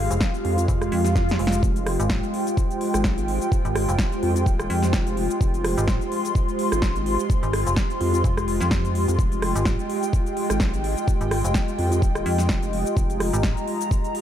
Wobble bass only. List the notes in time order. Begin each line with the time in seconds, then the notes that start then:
0.45 F2
1.63 F1
2.94 G#1
4.23 F2
4.46 D#1
4.94 F1
5.41 F1
6.72 G#1
8.01 F2
9.08 F2
9.19 F1
10.50 G#1
11.79 F2
12.02 D#1
12.49 F1
12.97 F1